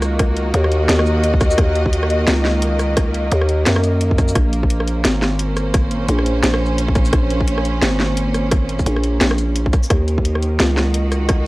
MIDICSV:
0, 0, Header, 1, 4, 480
1, 0, Start_track
1, 0, Key_signature, -5, "minor"
1, 0, Tempo, 346821
1, 267, Time_signature, 4, 2, 24, 8
1, 15877, End_track
2, 0, Start_track
2, 0, Title_t, "String section"
2, 0, Program_c, 0, 48
2, 0, Note_on_c, 0, 51, 83
2, 0, Note_on_c, 0, 58, 88
2, 0, Note_on_c, 0, 66, 82
2, 58, Note_on_c, 0, 75, 102
2, 6023, Note_on_c, 0, 46, 91
2, 6026, Note_off_c, 0, 66, 0
2, 6030, Note_off_c, 0, 51, 0
2, 6317, Note_on_c, 0, 72, 78
2, 6811, Note_on_c, 0, 61, 94
2, 6824, Note_off_c, 0, 75, 0
2, 13695, Note_on_c, 0, 51, 82
2, 13705, Note_off_c, 0, 46, 0
2, 13707, Note_off_c, 0, 58, 0
2, 14068, Note_on_c, 0, 58, 88
2, 14419, Note_off_c, 0, 72, 0
2, 14616, Note_off_c, 0, 61, 0
2, 14818, Note_on_c, 0, 66, 93
2, 14891, Note_on_c, 0, 75, 80
2, 15877, Note_off_c, 0, 51, 0
2, 15877, Note_off_c, 0, 58, 0
2, 15877, Note_off_c, 0, 66, 0
2, 15877, Note_off_c, 0, 75, 0
2, 15877, End_track
3, 0, Start_track
3, 0, Title_t, "808-style bass"
3, 0, Program_c, 1, 38
3, 0, Note_on_c, 1, 37, 99
3, 730, Note_off_c, 1, 37, 0
3, 748, Note_on_c, 1, 39, 99
3, 1212, Note_off_c, 1, 39, 0
3, 1226, Note_on_c, 1, 39, 99
3, 2171, Note_off_c, 1, 39, 0
3, 2190, Note_on_c, 1, 39, 95
3, 3133, Note_off_c, 1, 39, 0
3, 3151, Note_on_c, 1, 37, 101
3, 4573, Note_off_c, 1, 37, 0
3, 4593, Note_on_c, 1, 39, 97
3, 5054, Note_off_c, 1, 39, 0
3, 5070, Note_on_c, 1, 42, 100
3, 6013, Note_off_c, 1, 42, 0
3, 6029, Note_on_c, 1, 34, 97
3, 6972, Note_off_c, 1, 34, 0
3, 6991, Note_on_c, 1, 32, 99
3, 8413, Note_off_c, 1, 32, 0
3, 8424, Note_on_c, 1, 34, 100
3, 8890, Note_off_c, 1, 34, 0
3, 8903, Note_on_c, 1, 34, 101
3, 9849, Note_off_c, 1, 34, 0
3, 9867, Note_on_c, 1, 34, 98
3, 10811, Note_off_c, 1, 34, 0
3, 10825, Note_on_c, 1, 32, 97
3, 12250, Note_off_c, 1, 32, 0
3, 12266, Note_on_c, 1, 34, 99
3, 12731, Note_off_c, 1, 34, 0
3, 12750, Note_on_c, 1, 34, 101
3, 13453, Note_off_c, 1, 34, 0
3, 13709, Note_on_c, 1, 39, 95
3, 14652, Note_off_c, 1, 39, 0
3, 14667, Note_on_c, 1, 37, 99
3, 15877, Note_off_c, 1, 37, 0
3, 15877, End_track
4, 0, Start_track
4, 0, Title_t, "Drums"
4, 29, Note_on_c, 9, 37, 51
4, 29, Note_on_c, 9, 42, 36
4, 29, Note_on_c, 9, 82, 37
4, 167, Note_off_c, 9, 37, 0
4, 167, Note_off_c, 9, 42, 0
4, 167, Note_off_c, 9, 82, 0
4, 267, Note_on_c, 9, 37, 81
4, 267, Note_on_c, 9, 42, 75
4, 268, Note_on_c, 9, 36, 121
4, 405, Note_off_c, 9, 37, 0
4, 405, Note_off_c, 9, 42, 0
4, 406, Note_off_c, 9, 36, 0
4, 506, Note_on_c, 9, 42, 36
4, 644, Note_off_c, 9, 42, 0
4, 746, Note_on_c, 9, 42, 63
4, 884, Note_off_c, 9, 42, 0
4, 889, Note_on_c, 9, 37, 55
4, 991, Note_on_c, 9, 42, 37
4, 1028, Note_off_c, 9, 37, 0
4, 1130, Note_off_c, 9, 42, 0
4, 1232, Note_on_c, 9, 38, 116
4, 1232, Note_on_c, 9, 42, 74
4, 1371, Note_off_c, 9, 38, 0
4, 1371, Note_off_c, 9, 42, 0
4, 1371, Note_on_c, 9, 37, 83
4, 1471, Note_on_c, 9, 82, 41
4, 1510, Note_off_c, 9, 37, 0
4, 1609, Note_off_c, 9, 82, 0
4, 1710, Note_on_c, 9, 42, 62
4, 1848, Note_off_c, 9, 42, 0
4, 1850, Note_on_c, 9, 36, 62
4, 1947, Note_on_c, 9, 37, 53
4, 1947, Note_on_c, 9, 42, 35
4, 1947, Note_on_c, 9, 82, 38
4, 1949, Note_off_c, 9, 36, 0
4, 1949, Note_on_c, 9, 36, 101
4, 2086, Note_off_c, 9, 37, 0
4, 2086, Note_off_c, 9, 42, 0
4, 2086, Note_off_c, 9, 82, 0
4, 2087, Note_on_c, 9, 82, 69
4, 2088, Note_off_c, 9, 36, 0
4, 2186, Note_on_c, 9, 37, 83
4, 2186, Note_on_c, 9, 42, 81
4, 2190, Note_on_c, 9, 36, 115
4, 2225, Note_off_c, 9, 82, 0
4, 2324, Note_off_c, 9, 37, 0
4, 2324, Note_off_c, 9, 42, 0
4, 2328, Note_off_c, 9, 36, 0
4, 2429, Note_on_c, 9, 42, 37
4, 2567, Note_off_c, 9, 42, 0
4, 2571, Note_on_c, 9, 36, 60
4, 2669, Note_on_c, 9, 42, 65
4, 2709, Note_off_c, 9, 36, 0
4, 2808, Note_off_c, 9, 42, 0
4, 2808, Note_on_c, 9, 37, 56
4, 2908, Note_on_c, 9, 42, 38
4, 2946, Note_off_c, 9, 37, 0
4, 3046, Note_off_c, 9, 42, 0
4, 3148, Note_on_c, 9, 38, 117
4, 3148, Note_on_c, 9, 42, 82
4, 3286, Note_off_c, 9, 38, 0
4, 3286, Note_off_c, 9, 42, 0
4, 3388, Note_on_c, 9, 38, 60
4, 3526, Note_off_c, 9, 38, 0
4, 3627, Note_on_c, 9, 42, 63
4, 3765, Note_off_c, 9, 42, 0
4, 3867, Note_on_c, 9, 37, 55
4, 3867, Note_on_c, 9, 42, 36
4, 3867, Note_on_c, 9, 82, 38
4, 4005, Note_off_c, 9, 37, 0
4, 4005, Note_off_c, 9, 42, 0
4, 4005, Note_off_c, 9, 82, 0
4, 4108, Note_on_c, 9, 37, 86
4, 4108, Note_on_c, 9, 42, 85
4, 4111, Note_on_c, 9, 36, 114
4, 4246, Note_off_c, 9, 37, 0
4, 4246, Note_off_c, 9, 42, 0
4, 4249, Note_off_c, 9, 36, 0
4, 4352, Note_on_c, 9, 42, 39
4, 4490, Note_off_c, 9, 42, 0
4, 4589, Note_on_c, 9, 42, 69
4, 4727, Note_off_c, 9, 42, 0
4, 4727, Note_on_c, 9, 37, 57
4, 4827, Note_on_c, 9, 42, 41
4, 4865, Note_off_c, 9, 37, 0
4, 4966, Note_off_c, 9, 42, 0
4, 5069, Note_on_c, 9, 38, 115
4, 5069, Note_on_c, 9, 42, 84
4, 5207, Note_off_c, 9, 38, 0
4, 5207, Note_off_c, 9, 42, 0
4, 5207, Note_on_c, 9, 37, 88
4, 5309, Note_on_c, 9, 42, 39
4, 5309, Note_on_c, 9, 82, 41
4, 5345, Note_off_c, 9, 37, 0
4, 5448, Note_off_c, 9, 42, 0
4, 5448, Note_off_c, 9, 82, 0
4, 5547, Note_on_c, 9, 42, 64
4, 5686, Note_off_c, 9, 42, 0
4, 5691, Note_on_c, 9, 36, 60
4, 5790, Note_on_c, 9, 37, 58
4, 5790, Note_on_c, 9, 42, 37
4, 5790, Note_on_c, 9, 82, 37
4, 5791, Note_off_c, 9, 36, 0
4, 5791, Note_on_c, 9, 36, 106
4, 5929, Note_off_c, 9, 37, 0
4, 5929, Note_off_c, 9, 42, 0
4, 5929, Note_off_c, 9, 82, 0
4, 5929, Note_on_c, 9, 82, 69
4, 5930, Note_off_c, 9, 36, 0
4, 6026, Note_on_c, 9, 37, 85
4, 6026, Note_on_c, 9, 42, 83
4, 6031, Note_on_c, 9, 36, 120
4, 6067, Note_off_c, 9, 82, 0
4, 6165, Note_off_c, 9, 37, 0
4, 6165, Note_off_c, 9, 42, 0
4, 6169, Note_off_c, 9, 36, 0
4, 6267, Note_on_c, 9, 42, 39
4, 6405, Note_off_c, 9, 42, 0
4, 6411, Note_on_c, 9, 36, 61
4, 6506, Note_on_c, 9, 42, 69
4, 6549, Note_off_c, 9, 36, 0
4, 6645, Note_off_c, 9, 42, 0
4, 6646, Note_on_c, 9, 37, 56
4, 6747, Note_on_c, 9, 42, 42
4, 6784, Note_off_c, 9, 37, 0
4, 6886, Note_off_c, 9, 42, 0
4, 6985, Note_on_c, 9, 38, 122
4, 6985, Note_on_c, 9, 42, 84
4, 7123, Note_off_c, 9, 38, 0
4, 7123, Note_off_c, 9, 42, 0
4, 7226, Note_on_c, 9, 38, 66
4, 7365, Note_off_c, 9, 38, 0
4, 7463, Note_on_c, 9, 42, 68
4, 7602, Note_off_c, 9, 42, 0
4, 7704, Note_on_c, 9, 37, 57
4, 7704, Note_on_c, 9, 42, 38
4, 7704, Note_on_c, 9, 82, 36
4, 7843, Note_off_c, 9, 37, 0
4, 7843, Note_off_c, 9, 42, 0
4, 7843, Note_off_c, 9, 82, 0
4, 7944, Note_on_c, 9, 37, 85
4, 7944, Note_on_c, 9, 42, 89
4, 7948, Note_on_c, 9, 36, 127
4, 8082, Note_off_c, 9, 37, 0
4, 8082, Note_off_c, 9, 42, 0
4, 8086, Note_off_c, 9, 36, 0
4, 8179, Note_on_c, 9, 42, 40
4, 8318, Note_off_c, 9, 42, 0
4, 8421, Note_on_c, 9, 42, 70
4, 8559, Note_off_c, 9, 42, 0
4, 8562, Note_on_c, 9, 37, 54
4, 8664, Note_on_c, 9, 42, 42
4, 8700, Note_off_c, 9, 37, 0
4, 8803, Note_off_c, 9, 42, 0
4, 8905, Note_on_c, 9, 38, 124
4, 8905, Note_on_c, 9, 42, 88
4, 9044, Note_off_c, 9, 38, 0
4, 9044, Note_off_c, 9, 42, 0
4, 9047, Note_on_c, 9, 37, 85
4, 9185, Note_off_c, 9, 37, 0
4, 9217, Note_on_c, 9, 82, 37
4, 9355, Note_off_c, 9, 82, 0
4, 9386, Note_on_c, 9, 42, 66
4, 9524, Note_off_c, 9, 42, 0
4, 9527, Note_on_c, 9, 36, 65
4, 9622, Note_on_c, 9, 37, 53
4, 9622, Note_on_c, 9, 42, 39
4, 9622, Note_on_c, 9, 82, 36
4, 9628, Note_off_c, 9, 36, 0
4, 9628, Note_on_c, 9, 36, 106
4, 9761, Note_off_c, 9, 37, 0
4, 9761, Note_off_c, 9, 42, 0
4, 9761, Note_off_c, 9, 82, 0
4, 9762, Note_on_c, 9, 82, 66
4, 9766, Note_off_c, 9, 36, 0
4, 9865, Note_on_c, 9, 37, 77
4, 9865, Note_on_c, 9, 42, 83
4, 9868, Note_on_c, 9, 36, 126
4, 9900, Note_off_c, 9, 82, 0
4, 10003, Note_off_c, 9, 37, 0
4, 10003, Note_off_c, 9, 42, 0
4, 10006, Note_off_c, 9, 36, 0
4, 10108, Note_on_c, 9, 42, 38
4, 10247, Note_off_c, 9, 42, 0
4, 10249, Note_on_c, 9, 36, 64
4, 10346, Note_on_c, 9, 42, 70
4, 10387, Note_off_c, 9, 36, 0
4, 10485, Note_off_c, 9, 42, 0
4, 10487, Note_on_c, 9, 37, 52
4, 10588, Note_on_c, 9, 42, 40
4, 10625, Note_off_c, 9, 37, 0
4, 10726, Note_off_c, 9, 42, 0
4, 10827, Note_on_c, 9, 38, 127
4, 10827, Note_on_c, 9, 42, 84
4, 10966, Note_off_c, 9, 38, 0
4, 10966, Note_off_c, 9, 42, 0
4, 11067, Note_on_c, 9, 38, 68
4, 11206, Note_off_c, 9, 38, 0
4, 11306, Note_on_c, 9, 42, 66
4, 11445, Note_off_c, 9, 42, 0
4, 11548, Note_on_c, 9, 37, 53
4, 11548, Note_on_c, 9, 42, 38
4, 11548, Note_on_c, 9, 82, 35
4, 11686, Note_off_c, 9, 37, 0
4, 11686, Note_off_c, 9, 42, 0
4, 11686, Note_off_c, 9, 82, 0
4, 11783, Note_on_c, 9, 37, 79
4, 11783, Note_on_c, 9, 42, 80
4, 11790, Note_on_c, 9, 36, 123
4, 11922, Note_off_c, 9, 37, 0
4, 11922, Note_off_c, 9, 42, 0
4, 11928, Note_off_c, 9, 36, 0
4, 12028, Note_on_c, 9, 42, 38
4, 12166, Note_off_c, 9, 42, 0
4, 12168, Note_on_c, 9, 82, 37
4, 12169, Note_on_c, 9, 36, 65
4, 12266, Note_on_c, 9, 42, 65
4, 12306, Note_off_c, 9, 82, 0
4, 12307, Note_off_c, 9, 36, 0
4, 12405, Note_off_c, 9, 42, 0
4, 12407, Note_on_c, 9, 37, 50
4, 12504, Note_on_c, 9, 42, 38
4, 12545, Note_off_c, 9, 37, 0
4, 12643, Note_off_c, 9, 42, 0
4, 12745, Note_on_c, 9, 38, 127
4, 12745, Note_on_c, 9, 42, 77
4, 12884, Note_off_c, 9, 38, 0
4, 12884, Note_off_c, 9, 42, 0
4, 12884, Note_on_c, 9, 37, 81
4, 12985, Note_on_c, 9, 42, 37
4, 12985, Note_on_c, 9, 82, 38
4, 13022, Note_off_c, 9, 37, 0
4, 13123, Note_off_c, 9, 42, 0
4, 13123, Note_off_c, 9, 82, 0
4, 13225, Note_on_c, 9, 42, 65
4, 13364, Note_off_c, 9, 42, 0
4, 13370, Note_on_c, 9, 36, 66
4, 13468, Note_on_c, 9, 37, 51
4, 13468, Note_on_c, 9, 42, 38
4, 13468, Note_on_c, 9, 82, 35
4, 13469, Note_off_c, 9, 36, 0
4, 13469, Note_on_c, 9, 36, 110
4, 13606, Note_off_c, 9, 37, 0
4, 13606, Note_off_c, 9, 42, 0
4, 13606, Note_off_c, 9, 82, 0
4, 13608, Note_off_c, 9, 36, 0
4, 13608, Note_on_c, 9, 82, 67
4, 13705, Note_on_c, 9, 37, 79
4, 13705, Note_on_c, 9, 42, 77
4, 13709, Note_on_c, 9, 36, 123
4, 13747, Note_off_c, 9, 82, 0
4, 13843, Note_off_c, 9, 37, 0
4, 13843, Note_off_c, 9, 42, 0
4, 13847, Note_off_c, 9, 36, 0
4, 13949, Note_on_c, 9, 42, 37
4, 14087, Note_off_c, 9, 42, 0
4, 14089, Note_on_c, 9, 36, 62
4, 14187, Note_on_c, 9, 42, 66
4, 14227, Note_off_c, 9, 36, 0
4, 14325, Note_off_c, 9, 42, 0
4, 14329, Note_on_c, 9, 37, 52
4, 14429, Note_on_c, 9, 42, 38
4, 14468, Note_off_c, 9, 37, 0
4, 14567, Note_off_c, 9, 42, 0
4, 14666, Note_on_c, 9, 38, 120
4, 14666, Note_on_c, 9, 42, 78
4, 14805, Note_off_c, 9, 38, 0
4, 14805, Note_off_c, 9, 42, 0
4, 14907, Note_on_c, 9, 38, 64
4, 15045, Note_off_c, 9, 38, 0
4, 15143, Note_on_c, 9, 42, 64
4, 15281, Note_off_c, 9, 42, 0
4, 15386, Note_on_c, 9, 37, 52
4, 15386, Note_on_c, 9, 42, 37
4, 15386, Note_on_c, 9, 82, 36
4, 15525, Note_off_c, 9, 37, 0
4, 15525, Note_off_c, 9, 42, 0
4, 15525, Note_off_c, 9, 82, 0
4, 15621, Note_on_c, 9, 37, 81
4, 15621, Note_on_c, 9, 42, 78
4, 15628, Note_on_c, 9, 36, 115
4, 15760, Note_off_c, 9, 37, 0
4, 15760, Note_off_c, 9, 42, 0
4, 15767, Note_off_c, 9, 36, 0
4, 15877, End_track
0, 0, End_of_file